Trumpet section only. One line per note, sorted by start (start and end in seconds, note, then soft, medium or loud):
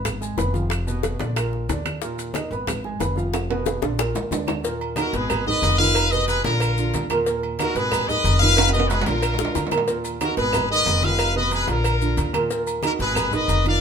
4.98 5.14 F#4 medium
4.98 5.13 A#4 medium
5.14 5.48 G#4 medium
5.14 5.47 B4 medium
5.47 5.78 B4 medium
5.47 5.77 D#5 loud
5.79 6.10 B4 medium
5.79 6.09 F5 loud
6.11 6.26 B4 medium
6.11 6.28 D#5 loud
6.28 6.44 G#4 medium
6.28 6.43 B4 medium
6.44 7.07 F4 medium
6.44 7.06 A#4 medium
7.60 7.76 F#4 medium
7.60 7.75 A#4 medium
7.76 8.09 G#4 medium
7.76 8.09 B4 loud
8.08 8.41 B4 medium
8.08 8.41 D#5 loud
8.39 8.72 B4 medium
8.39 8.71 F5 loud
8.72 8.87 B4 medium
8.72 8.88 D#5 loud
8.89 9.07 G#4 medium
8.89 9.06 B4 medium
9.05 9.72 F4 medium
9.05 9.71 A#4 medium
10.22 10.37 F#4 medium
10.22 10.37 A#4 medium
10.37 10.68 G#4 medium
10.37 10.67 B4 medium
10.71 11.01 B4 medium
10.71 11.01 D#5 loud
11.04 11.36 B4 medium
11.04 11.36 F5 loud
11.37 11.52 B4 medium
11.37 11.52 D#5 loud
11.53 11.68 G#4 medium
11.53 11.68 B4 loud
11.70 12.31 F4 medium
11.70 12.31 A#4 medium
12.85 12.92 F#4 medium
12.85 12.92 A#4 medium
13.01 13.31 G#4 medium
13.01 13.31 B4 medium
13.34 13.66 B4 medium
13.34 13.66 D#5 loud
13.67 13.81 D5 medium
13.67 13.81 F5 loud